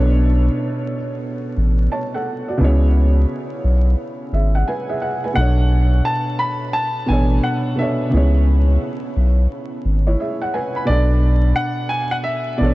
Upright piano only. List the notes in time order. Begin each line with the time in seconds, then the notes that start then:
5.35 F#5
6.05 A5
6.39 B5
6.73 A5
7.08 G#5
7.43 F#5
7.79 E5
10.87 D5
11.56 F#5
11.89 G#5
12.11 F#5
12.24 E5
12.58 D5